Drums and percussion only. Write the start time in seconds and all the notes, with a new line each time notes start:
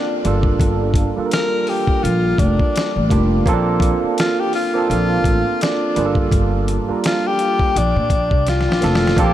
0.25 closed hi-hat
0.43 kick
0.60 kick, closed hi-hat
0.94 kick, closed hi-hat
1.31 snare, closed hi-hat
1.67 open hi-hat
1.87 kick
2.05 closed hi-hat
2.38 kick, closed hi-hat
2.60 kick
2.76 snare, closed hi-hat
3.10 kick, closed hi-hat
3.46 kick, closed hi-hat
3.80 kick, closed hi-hat
4.18 snare, closed hi-hat
4.53 open hi-hat
4.91 closed hi-hat
5.24 kick, closed hi-hat
5.61 snare, closed hi-hat
5.96 closed hi-hat
6.15 kick
6.32 kick, closed hi-hat
6.68 closed hi-hat
7.04 snare, closed hi-hat
7.39 closed hi-hat
7.59 kick
7.76 closed hi-hat
8.10 kick, closed hi-hat
8.31 kick
8.47 snare, closed hi-hat
8.61 snare
8.72 snare
8.82 snare, closed hi-hat
8.95 snare
9.07 snare
9.17 kick, closed hi-hat